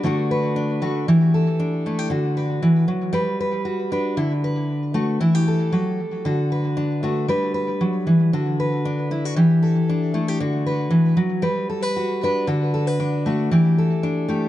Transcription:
0.03 D3 A3 D4 F#4, muted steel-string acoustic guitar stroke
0.31 B4
0.56 D4
0.82 A3 F#4
1.08 E3 G4
1.34 A4
1.59 D4
1.86 A3 E4
1.99 G4
2.10 D3 F#4
2.37 B4
2.62 E3
2.88 F#3
3.13 G3 B4
3.40 B4
3.65 F#4
3.92 D4 B4
4.17 D3 E4
4.44 B4
4.94 A3 F#4
5.21 E3 E4
5.35 G4
5.48 A4
5.72 F#3
6.25 D3 F#4
6.52 B4
6.77 D4
7.03 A3 F#4
7.28 G3 B4
7.54 B4
7.81 F#3
8.07 E3
8.33 D3 F#4
8.60 B4
8.85 D4
9.11 E4, muted steel-string acoustic guitar stroke
9.25 F#4
9.36 E3 G4
9.63 A4
9.89 D4
10.14 A3 E4
10.28 G4
10.40 D3 F#4
10.66 B4
10.90 E3
11.17 F#3
11.42 G3 B4
11.70 A4
11.82 B4
11.96 F#4
12.23 D4 B4
12.47 D3 F#4
12.74 A4
12.87 B4
13.00 D4
13.26 A3 F#4
13.51 E3 G4
13.78 A4
14.03 D4
14.28 A3 G4

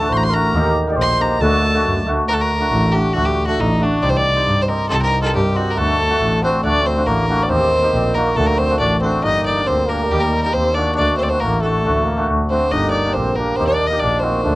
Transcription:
Already playing: A4 A5
0.00 A3 D4 F#4
0.09 A1 C5 C6
0.17 A#5
0.23 C6
0.30 A3 D4 A#4 A#5
0.35 F#4
0.54 D#2 A#3 D#4 G4
0.87 A#3 D#4 G4 D5
0.97 A#1 C5
1.01 C6
1.19 A#3 D#4 G4 A#5
1.41 D2 A3 D4 F#4 A4 A5
1.73 A3 D4 F#4
1.85 F#2
2.07 D2 A3 D4 F#4
2.28 D2 A3 D4 F#4 A#4
2.34 A4
2.41 A#4
2.60 A3 D4 F#4
2.71 A1
2.92 A3 D4 F#4 G4
3.13 D2 A3 D4 F#4
3.25 G4
3.46 A3 D4 F#4 A4
3.59 A1 D#4
3.79 A3 D4 F#4
4.01 C2 C4 D#4 G4 D5
4.09 C5
4.17 D5
4.35 C4 D#4 G4
4.45 G2
4.62 C5
4.68 C4 D#4 G4 A#4
4.88 C2 C4 D#4 G4 A4
5.02 A#4
5.21 C4 D#4 A4 A#4
5.33 G2 G4
5.54 C4 D#4 F#4 G4
5.70 A#4
5.75 D2 A3 D4 F#4 A4
6.09 A3 D4 F#4
6.20 A1
6.42 A3 C4 D4 F#4 C5
6.63 D2 A3 D4 F#4 D5
6.83 C4 C5
6.96 A3 D4 F#4
7.05 A1 A#3 A#4
7.28 A3 A#3 D4 F#4
7.43 D5
7.47 D#2 A#3 C4 D#4 G4 C5
7.82 A#3 D#4 G4
7.94 A#1 C4
8.14 A#3 D#4 F#4 A#4
8.36 D2 A3 D4 F#4 A4
8.45 A#3 A#4
8.56 C4 C5
8.70 A3 D4 F#4
8.79 A1 D4 D5
9.00 A3 C4 D4 C5
9.04 F#4
9.23 G1 A#3 D4 D#4 G4 D#5
9.46 D5
9.56 A#3 D4 G4
9.64 D2 C4 C5
9.87 A#3 D4 G4 A#4
10.07 D#2 G3 G4
10.12 A#3 D#4 G4
10.20 A#4
10.43 A#3 D#4 G4 A#4
10.52 D#2 C4 C5
10.74 A#3 D4 D#4 F#4 D5
10.94 D2 D4 D5
10.99 A3 D4 F#4
11.17 C4 C5
11.23 D5
11.28 A3 C4 D4 F#4 C5
11.39 A1 A#3 A#4
11.61 A3 D4 F#4 A4
11.84 D2 A3 D4 F#4
12.05 A#3
12.17 A3 D4 F#4
12.29 D2
12.49 A3 C4 D4 F#4 C5
12.71 G1 A#3 D4 D#4 G4 D#5
12.90 D5
13.05 A#3 D4 G4
13.13 A#1 C4 C5
13.35 A#3 D4 A#4
13.40 G4
13.56 D#2 A#3 C4 C5
13.60 D#4 G4
13.67 D4 D5
13.87 A#3 D#4 D#5
13.92 G4
13.99 A#1 D4 D5
14.19 A#3 D#4 F#4 C5
14.24 C4
14.44 D2 A3 D4 F#4

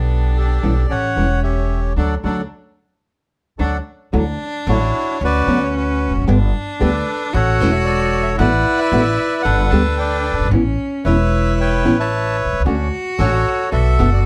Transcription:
Already playing: B1 B3 D4 G4 A4
0.37 G4 A4 D5
0.62 B1 E3 G3 B3 C#4 E4 G4 A4
0.89 A1 C#4 G4 A4 C#5 F#5
1.16 E1 E3 G3 C#4 E4 G4 A4
1.43 G4 C#5 E5
1.96 D2 F#3 A3 D4 F#4 A4 D5 F#5
2.23 D2 F#3 A3 D4 F#4 A4 D5 F#5
3.58 D2 F#3 A3 D4 F#4 A4 D5 F#5
4.13 D2 D3 F#3 A3 D4 E4 F#4
4.67 A1 D3 F#3 A3 E4 F#4 C#5
5.21 D2 C#4 F#4 B4
5.25 D5
5.47 D2 D3 F#3 B3 C#4 F#4
5.64 C#5
5.76 F#4 B4
6.08 E1
6.15 F1
6.22 F#1
6.27 G1 D3 G3 B3 D4 G4
6.79 D2 D3 G3 B3 G4 A4 B4 D5
7.34 A1 F#4 A4 C#5 F#5
7.60 E1 E3 A3 C#4 E4
7.72 E5
7.85 A4 D5
8.23 E5
8.38 A1 D3 A3 B3 E4 F#4 B4 D5 F#5
8.79 B4 E5
8.92 A1 D3 A3 B3 F#4
9.42 G1 D4 A4 B4 F#5
9.70 D2 D3 G3 B3 G4 A5
9.98 B4 D5 G5
10.31 F#1
10.39 G1
10.45 G#1
10.51 A1 E3 B3 C#4 E4
11.05 E1 E3 B3 C#4 E4 B4 C#5 E5
11.60 B4 C#5 G5
11.84 A1 E3 B3 C#4 E4
11.99 C#5 E5 A5
12.45 B1
12.53 C2
12.60 C#2
12.65 D2 D3 A3 C#4 D4 F#4
13.18 A1 D3 A3 C#4 D4 F#4 A4 C#5
13.71 B1 B3 D4 F#4 A4 E5
13.97 F#1 B2 D3 A3 B3 D4 F#4 A4
14.13 D5

